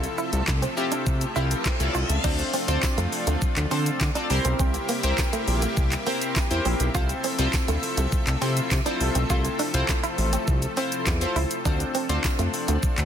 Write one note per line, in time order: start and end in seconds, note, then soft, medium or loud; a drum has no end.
0.00 2.20 C3 medium
0.00 2.20 F3 medium
0.00 2.20 A3 medium
0.00 0.63 C4 medium
0.00 0.63 E4 medium
0.00 0.63 F4 medium
0.00 0.63 A4 medium
0.00 2.20 A4 medium
0.00 2.20 E5 medium
0.00 muted clean electric guitar stroke soft
0.00 closed hi-hat soft
0.00 riser medium
0.00 shaker soft
0.18 0.30 E4 medium
0.18 shaker medium
0.33 0.42 C2 loud
0.33 closed hi-hat medium
0.33 shaker medium
0.47 0.66 C2 loud
0.47 kick loud
0.47 snare medium
0.47 clap loud
0.47 shaker medium
0.62 0.74 C4 medium
0.62 closed hi-hat medium
0.62 shaker medium
0.77 1.26 C4 medium
0.77 1.26 E4 medium
0.77 1.27 F4 medium
0.77 1.27 G4 medium
0.77 muted clean electric guitar stroke soft
0.77 shaker medium
0.92 1.03 D4 medium
0.92 closed hi-hat medium
0.92 shaker medium
1.06 1.25 C3 loud
1.06 kick loud
1.06 shaker medium
1.21 closed hi-hat medium
1.21 shaker medium
1.36 1.55 C2 medium
1.36 1.73 C4 medium
1.36 1.73 E4 medium
1.36 1.47 E4 medium
1.36 1.73 F4 medium
1.36 1.73 G4 medium
1.36 shaker medium
1.51 closed hi-hat medium
1.51 shaker medium
1.65 kick loud
1.65 snare loud
1.65 clap loud
1.65 shaker medium
1.80 1.89 C2 medium
1.80 2.17 C4 medium
1.80 2.17 E4 medium
1.80 2.17 F4 medium
1.80 2.17 A4 medium
1.80 closed hi-hat medium
1.80 shaker medium
1.95 2.04 C2 medium
1.95 2.06 F4 medium
1.95 shaker medium
2.09 2.19 C#2 medium
2.09 closed hi-hat medium
2.09 shaker medium
2.24 2.43 D2 loud
2.24 13.05 C3 medium
2.24 4.28 F3 medium
2.24 4.28 A3 medium
2.24 2.61 C4 medium
2.24 2.61 D4 medium
2.24 2.36 D4 medium
2.24 4.28 D4 medium
2.24 2.61 F4 medium
2.24 4.28 F4 medium
2.24 2.61 A4 medium
2.24 2.61 C5 medium
2.24 kick loud
2.24 crash loud
2.24 shaker medium
2.39 muted clean electric guitar stroke soft
2.39 closed hi-hat soft
2.39 shaker soft
2.53 2.65 C4 medium
2.53 open hi-hat medium
2.53 shaker medium
2.68 2.78 D2 loud
2.68 3.55 C4 medium
2.68 3.55 D4 medium
2.68 3.55 F4 medium
2.68 3.55 A4 medium
2.68 3.55 C5 loud
2.68 closed hi-hat medium
2.68 shaker medium
2.83 kick loud
2.83 snare medium
2.83 clap loud
2.83 tambourine medium
2.83 shaker medium
2.98 3.07 F2 medium
2.98 3.09 A3 medium
2.98 closed hi-hat medium
2.98 shaker medium
3.12 muted clean electric guitar stroke soft
3.12 open hi-hat medium
3.12 shaker medium
3.27 3.37 D2 loud
3.27 3.39 A3 medium
3.27 closed hi-hat medium
3.27 shaker medium
3.42 kick loud
3.42 shaker medium
3.56 3.66 D2 loud
3.56 clap medium
3.56 closed hi-hat medium
3.56 shaker medium
3.71 3.90 D3 loud
3.71 4.08 C4 medium
3.71 3.83 C4 medium
3.71 4.08 D4 medium
3.71 4.08 F4 medium
3.71 4.08 A4 medium
3.71 4.08 C5 loud
3.71 open hi-hat medium
3.71 shaker medium
3.86 closed hi-hat medium
3.86 shaker medium
4.01 4.10 D3 loud
4.01 kick loud
4.01 snare loud
4.01 clap loud
4.01 tambourine medium
4.01 shaker medium
4.15 4.29 C4 medium
4.15 4.30 D4 medium
4.15 4.27 D4 medium
4.15 4.30 F4 medium
4.15 4.30 A4 medium
4.15 4.30 D5 medium
4.15 closed hi-hat medium
4.15 shaker medium
4.30 4.39 C2 loud
4.30 6.92 G3 medium
4.30 6.92 A#3 medium
4.30 4.92 C4 medium
4.30 4.92 E4 medium
4.30 6.92 E4 medium
4.30 4.92 G4 medium
4.30 6.92 G4 medium
4.30 4.92 A#4 medium
4.30 4.92 C5 medium
4.30 muted clean electric guitar stroke soft
4.30 open hi-hat medium
4.30 shaker medium
4.45 4.54 B1 medium
4.45 4.56 C4 medium
4.45 closed hi-hat medium
4.45 shaker medium
4.59 4.78 C2 loud
4.59 4.71 C4 medium
4.59 kick loud
4.59 shaker medium
4.74 muted clean electric guitar stroke soft
4.74 closed hi-hat soft
4.74 shaker soft
4.89 5.00 A#3 medium
4.89 open hi-hat medium
4.89 shaker medium
5.03 5.13 C2 loud
5.03 5.90 C4 medium
5.03 5.90 E4 medium
5.03 5.90 G4 medium
5.03 5.90 A#4 medium
5.03 5.90 C5 loud
5.03 closed hi-hat medium
5.03 shaker medium
5.18 kick loud
5.18 snare medium
5.18 clap loud
5.18 tambourine medium
5.18 shaker medium
5.33 5.44 A3 medium
5.33 closed hi-hat medium
5.33 shaker medium
5.48 5.66 A#1 loud
5.48 muted clean electric guitar stroke soft
5.48 open hi-hat medium
5.48 shaker medium
5.62 5.74 A3 medium
5.62 closed hi-hat medium
5.62 shaker medium
5.77 5.96 C2 medium
5.77 kick loud
5.77 shaker medium
5.92 clap medium
5.92 closed hi-hat medium
5.92 shaker medium
6.06 6.18 A#3 medium
6.06 6.44 C4 medium
6.06 6.44 E4 medium
6.06 6.44 G4 medium
6.06 6.44 A#4 medium
6.06 6.44 C5 loud
6.06 open hi-hat medium
6.06 shaker medium
6.22 closed hi-hat medium
6.22 shaker medium
6.36 kick loud
6.36 snare loud
6.36 clap loud
6.36 tambourine medium
6.36 shaker medium
6.50 6.60 E2 medium
6.50 6.88 C4 medium
6.50 6.88 E4 medium
6.50 6.88 G4 medium
6.50 6.88 A#4 medium
6.50 6.88 C5 loud
6.50 closed hi-hat medium
6.50 shaker medium
6.65 6.75 A#1 medium
6.65 6.77 C4 medium
6.65 open hi-hat medium
6.65 shaker medium
6.80 6.89 B1 medium
6.80 closed hi-hat medium
6.80 shaker medium
6.94 7.13 C2 loud
6.94 13.05 F3 medium
6.94 13.05 A3 medium
6.94 7.32 C4 medium
6.94 7.32 E4 medium
6.94 7.32 F4 medium
6.94 7.06 F4 medium
6.94 7.32 A4 medium
6.94 13.05 A4 medium
6.94 7.32 C5 loud
6.94 11.61 E5 medium
6.94 kick loud
6.94 shaker medium
7.09 muted clean electric guitar stroke soft
7.09 closed hi-hat medium
7.09 shaker soft
7.24 7.36 C4 medium
7.24 open hi-hat medium
7.24 shaker medium
7.38 7.48 C2 loud
7.38 8.25 C4 medium
7.38 8.25 E4 medium
7.38 8.25 F4 medium
7.38 8.25 A4 medium
7.38 8.25 C5 loud
7.38 closed hi-hat medium
7.38 shaker medium
7.53 kick loud
7.53 snare medium
7.53 clap loud
7.53 tambourine medium
7.53 shaker medium
7.68 7.78 D2 medium
7.68 7.80 A3 medium
7.68 closed hi-hat medium
7.68 shaker soft
7.83 muted clean electric guitar stroke soft
7.83 open hi-hat medium
7.83 shaker medium
7.97 8.07 C2 medium
7.97 8.09 A3 medium
7.97 closed hi-hat medium
7.97 shaker medium
8.12 kick loud
8.12 shaker medium
8.27 8.36 C2 loud
8.27 clap medium
8.27 closed hi-hat medium
8.27 shaker medium
8.41 8.60 C3 loud
8.41 8.79 C4 medium
8.41 8.53 C4 medium
8.41 8.79 E4 medium
8.41 8.79 F4 medium
8.41 8.79 A4 medium
8.41 8.79 C5 medium
8.41 open hi-hat medium
8.41 shaker medium
8.57 closed hi-hat medium
8.57 shaker medium
8.71 8.81 C3 loud
8.71 kick loud
8.71 snare medium
8.71 clap loud
8.71 tambourine medium
8.71 shaker medium
8.85 9.23 C4 medium
8.85 8.97 D4 medium
8.85 9.23 E4 medium
8.85 9.23 F4 medium
8.85 9.23 A4 medium
8.85 9.23 C5 medium
8.85 closed hi-hat medium
8.85 shaker medium
9.01 9.10 C2 medium
9.01 muted clean electric guitar stroke soft
9.01 open hi-hat medium
9.01 shaker medium
9.15 9.25 B1 medium
9.15 9.27 C4 medium
9.15 closed hi-hat medium
9.15 shaker medium
9.30 9.49 C2 loud
9.30 9.67 C4 medium
9.30 9.67 E4 medium
9.30 9.67 F4 medium
9.30 9.42 F4 medium
9.30 9.67 A4 medium
9.30 9.67 C5 medium
9.30 kick loud
9.30 shaker medium
9.45 muted clean electric guitar stroke soft
9.45 closed hi-hat medium
9.45 shaker medium
9.59 9.71 D4 medium
9.59 open hi-hat medium
9.59 shaker medium
9.74 9.83 C2 loud
9.74 10.61 C4 medium
9.74 10.61 E4 medium
9.74 10.61 F4 medium
9.74 10.61 A4 medium
9.74 10.61 C5 loud
9.74 closed hi-hat medium
9.74 shaker medium
9.89 kick loud
9.89 snare medium
9.89 clap loud
9.89 tambourine medium
9.89 shaker medium
10.04 10.15 E4 medium
10.04 closed hi-hat medium
10.04 shaker medium
10.18 10.37 A1 medium
10.18 muted clean electric guitar stroke soft
10.18 open hi-hat medium
10.18 shaker soft
10.33 10.44 C4 medium
10.33 closed hi-hat medium
10.33 shaker medium
10.47 10.66 C2 loud
10.47 kick loud
10.47 shaker medium
10.62 closed hi-hat medium
10.62 shaker medium
10.77 11.14 C4 medium
10.77 10.89 C4 medium
10.77 11.14 E4 medium
10.77 11.14 F4 medium
10.77 11.14 A4 medium
10.77 11.14 C5 medium
10.77 open hi-hat medium
10.77 shaker medium
10.92 closed hi-hat medium
10.92 shaker medium
11.06 11.25 E2 loud
11.06 kick loud
11.06 snare medium
11.06 clap loud
11.06 tambourine medium
11.06 shaker medium
11.21 11.58 C4 medium
11.21 11.58 E4 medium
11.21 11.58 F4 medium
11.21 11.58 A4 medium
11.21 11.58 C5 medium
11.21 closed hi-hat medium
11.21 shaker medium
11.36 11.45 C#2 medium
11.36 11.47 E4 medium
11.36 open hi-hat medium
11.36 shaker medium
11.51 closed hi-hat medium
11.51 shaker medium
11.65 11.84 D2 loud
11.65 12.02 C4 medium
11.65 12.02 D4 medium
11.65 13.05 D4 medium
11.65 11.77 D4 medium
11.65 12.02 F4 medium
11.65 12.03 A4 medium
11.65 12.03 C5 medium
11.65 kick loud
11.65 shaker medium
11.80 muted clean electric guitar stroke soft
11.80 closed hi-hat medium
11.80 shaker medium
11.95 12.06 C4 medium
11.95 open hi-hat medium
11.95 shaker medium
12.09 12.19 D2 loud
12.09 12.96 C4 medium
12.09 12.96 D4 medium
12.09 12.96 F4 medium
12.09 12.96 A4 medium
12.09 12.96 C5 loud
12.09 closed hi-hat medium
12.09 shaker medium
12.24 kick loud
12.24 snare medium
12.24 clap loud
12.24 tambourine medium
12.24 shaker medium
12.39 12.48 F2 loud
12.39 12.50 A3 medium
12.39 closed hi-hat medium
12.39 shaker medium
12.54 muted clean electric guitar stroke soft
12.54 open hi-hat medium
12.54 shaker medium
12.68 12.78 D2 loud
12.68 12.80 A3 medium
12.68 closed hi-hat medium
12.68 shaker medium
12.83 kick loud
12.83 shaker medium
12.98 13.05 D2 loud
12.98 clap medium
12.98 closed hi-hat medium
12.98 shaker medium